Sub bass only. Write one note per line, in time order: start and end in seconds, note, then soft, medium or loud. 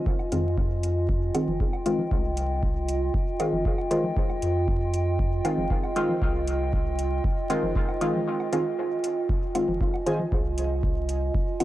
0.32 1.31 F2 medium
1.48 1.58 F1 loud
2.11 3.10 C2 medium
3.53 3.63 F1 loud
4.42 5.41 F2 loud
5.58 5.68 F1 loud
6.22 7.20 C2 medium
7.63 7.73 F1 loud
9.68 9.78 F1 loud
10.32 11.31 C2 medium